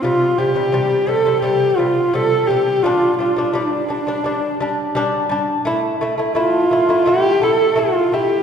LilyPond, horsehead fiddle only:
\new Staff \with { instrumentName = "Horsehead fiddle" } { \time 4/4 \tempo 4 = 85 f'8 g'4 a'8 g'8 f'8 a'8 g'8 | f'8 f'8 d'2 r4 | r4 f'4 g'8 a'8 f'8 g'8 | }